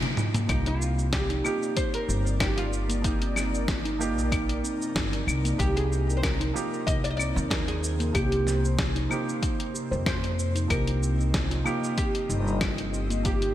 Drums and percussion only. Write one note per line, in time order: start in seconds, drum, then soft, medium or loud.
0.02 closed hi-hat soft
0.02 mid tom medium
0.17 mid tom loud
0.17 cabasa medium
0.34 closed hi-hat soft
0.34 mid tom medium
0.34 cabasa soft
0.49 kick loud
0.49 closed hi-hat medium
0.49 cabasa soft
0.49 claves medium
0.66 closed hi-hat soft
0.82 cabasa medium
0.99 cabasa soft
1.13 kick loud
1.13 snare loud
1.13 closed hi-hat medium
1.13 cabasa soft
1.30 closed hi-hat soft
1.45 cabasa medium
1.45 claves medium
1.63 cabasa soft
1.77 kick loud
1.77 closed hi-hat medium
1.77 cabasa soft
1.94 closed hi-hat soft
2.09 cabasa medium
2.27 cabasa soft
2.40 kick loud
2.40 snare loud
2.40 closed hi-hat medium
2.40 cabasa soft
2.40 claves medium
2.58 closed hi-hat soft
2.73 cabasa medium
2.90 closed hi-hat soft
2.90 cabasa soft
3.04 kick loud
3.04 closed hi-hat medium
3.04 cabasa soft
3.22 closed hi-hat soft
3.36 snare soft
3.36 cabasa medium
3.36 claves medium
3.54 cabasa soft
3.68 kick loud
3.68 snare loud
3.68 closed hi-hat medium
3.68 cabasa soft
3.85 closed hi-hat soft
4.01 cabasa medium
4.18 cabasa soft
4.32 kick loud
4.32 closed hi-hat medium
4.32 cabasa soft
4.32 claves medium
4.49 closed hi-hat soft
4.65 cabasa medium
4.82 cabasa soft
4.96 kick loud
4.96 snare loud
4.96 closed hi-hat medium
4.96 cabasa soft
5.13 closed hi-hat soft
5.28 cabasa medium
5.28 claves medium
5.45 closed hi-hat soft
5.45 cabasa soft
5.59 kick loud
5.59 closed hi-hat medium
5.59 cabasa soft
5.77 closed hi-hat soft
5.92 cabasa medium
6.10 cabasa soft
6.23 kick loud
6.23 snare loud
6.23 closed hi-hat medium
6.23 cabasa soft
6.23 claves medium
6.41 closed hi-hat soft
6.56 cabasa medium
6.74 cabasa soft
6.87 kick loud
6.87 closed hi-hat medium
6.87 cabasa soft
7.05 closed hi-hat soft
7.19 cabasa medium
7.19 claves medium
7.37 cabasa soft
7.51 kick loud
7.51 snare loud
7.51 closed hi-hat medium
7.51 cabasa soft
7.68 closed hi-hat soft
7.84 cabasa medium
8.00 closed hi-hat soft
8.00 cabasa soft
8.15 kick loud
8.15 closed hi-hat medium
8.15 cabasa soft
8.15 claves medium
8.32 closed hi-hat soft
8.47 snare soft
8.47 cabasa medium
8.65 cabasa soft
8.79 kick loud
8.79 snare loud
8.79 closed hi-hat medium
8.79 cabasa soft
8.96 closed hi-hat soft
9.11 cabasa medium
9.11 claves medium
9.29 cabasa soft
9.42 kick loud
9.42 closed hi-hat medium
9.42 cabasa soft
9.60 closed hi-hat soft
9.75 cabasa medium
9.93 cabasa soft
10.06 kick loud
10.06 snare loud
10.06 closed hi-hat medium
10.06 cabasa soft
10.06 claves medium
10.24 closed hi-hat soft
10.39 cabasa medium
10.56 closed hi-hat soft
10.56 cabasa medium
10.70 kick loud
10.70 closed hi-hat medium
10.70 cabasa soft
10.70 claves medium
10.87 closed hi-hat soft
11.03 cabasa medium
11.20 cabasa soft
11.34 kick loud
11.34 snare medium
11.34 closed hi-hat medium
11.34 cabasa soft
11.51 closed hi-hat soft
11.66 cabasa medium
11.66 claves medium
11.84 cabasa soft
11.98 kick loud
11.98 closed hi-hat medium
11.98 cabasa soft
12.15 closed hi-hat soft
12.30 cabasa medium
12.47 cabasa soft
12.61 kick loud
12.61 snare medium
12.61 closed hi-hat medium
12.61 cabasa soft
12.61 claves medium
12.78 closed hi-hat soft
12.94 cabasa medium
13.10 closed hi-hat soft
13.10 cabasa soft
13.25 kick loud
13.25 closed hi-hat medium
13.25 cabasa soft
13.42 closed hi-hat soft